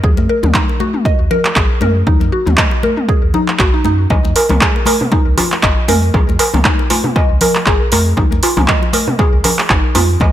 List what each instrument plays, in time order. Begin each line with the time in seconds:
0.04 sub bass D#2, synth pluck G#4, kick, low conga
0.17 sub bass F#2, muted conga, high conga
0.29 synth pluck A#4
0.43 sub bass D#2, mid tom, high conga, low conga
0.54 synth pluck D#4, kick, clap
0.69 muted conga
0.80 synth pluck F#4, high conga
0.94 mid tom
1.05 synth pluck D#5, kick, muted conga
1.20 sub bass D#2
1.31 synth pluck A#4, low conga
1.45 clap, muted conga
1.56 sub bass A#1, synth pluck G#4, kick, clap
1.81 sub bass F#2, synth pluck A#4, mid tom, muted conga, high conga
2.07 sub bass D#2, synth pluck D#4, kick, low conga
2.21 sub bass F#2, muted conga, high conga
2.32 synth pluck F#4
2.46 sub bass D#2, mid tom, high conga, low conga
2.57 synth pluck D#5, kick, clap
2.71 muted conga
2.83 synth pluck A#4, high conga
2.97 mid tom
3.09 synth pluck G#4, kick, muted conga
3.23 sub bass D#2
3.34 synth pluck D#4, low conga
3.48 clap, muted conga
3.59 sub bass A#1, synth pluck F#4, kick, clap
3.74 synth pluck D#4
3.84 sub bass F#2, synth pluck D#4, muted conga, high conga
4.10 sub bass C#2, synth pluck D#5, kick, darbuka tek, low conga
4.25 sub bass F2, muted conga, high conga
4.36 synth pluck A#4, open hi-hat, darbuka tek
4.49 sub bass C#2, mid tom, darbuka ka, high conga, low conga
4.61 synth pluck G#4, kick, clap, darbuka tek
4.76 muted conga
4.86 synth pluck A#4, open hi-hat, darbuka ka, high conga, darbuka tek
5.01 mid tom, darbuka dum
5.12 synth pluck D#4, kick, muted conga, darbuka tek
5.27 sub bass C#2
5.38 synth pluck F4, open hi-hat, darbuka tek, low conga
5.52 clap, muted conga
5.63 sub bass G#1, synth pluck D#5, kick, clap, darbuka tek
5.88 sub bass F2, synth pluck A#4, open hi-hat, mid tom, muted conga, darbuka ka, darbuka tek, high conga
6.14 sub bass C#2, synth pluck G#4, kick, darbuka tek, low conga
6.29 sub bass F2, muted conga, high conga
6.39 synth pluck A#4, open hi-hat, darbuka tek
6.54 sub bass C#2, mid tom, darbuka ka, high conga, low conga
6.65 synth pluck D#4, kick, clap, darbuka tek
6.79 muted conga
6.90 synth pluck F4, open hi-hat, darbuka ka, darbuka tek, high conga
7.04 mid tom, darbuka dum
7.16 synth pluck D#5, kick, muted conga, darbuka tek
7.30 sub bass C#2
7.41 synth pluck A#4, open hi-hat, darbuka tek, low conga
7.55 clap, muted conga
7.66 sub bass G#1, synth pluck G#4, kick, clap, darbuka tek
7.92 sub bass F2, synth pluck A#4, open hi-hat, muted conga, darbuka tek, high conga
8.17 sub bass C#2, synth pluck D#4, kick, darbuka tek, low conga
8.31 sub bass F2, muted conga, high conga
8.43 synth pluck F4, open hi-hat, darbuka tek
8.57 sub bass C#2, mid tom, darbuka ka, high conga, low conga
8.68 synth pluck D#5, kick, clap, darbuka tek
8.83 muted conga
8.93 synth pluck A#4, open hi-hat, darbuka ka, high conga, darbuka tek
9.08 mid tom, darbuka dum
9.19 synth pluck G#4, kick, muted conga, darbuka tek
9.33 sub bass C#2
9.44 synth pluck A#4, open hi-hat, darbuka tek, low conga
9.59 clap, muted conga
9.69 sub bass G#1, synth pluck D#4, kick, clap, darbuka tek
9.95 sub bass F2, synth pluck F4, open hi-hat, mid tom, darbuka ka, muted conga, darbuka tek, high conga
10.20 sub bass C#2, synth pluck D#5, kick, darbuka tek, low conga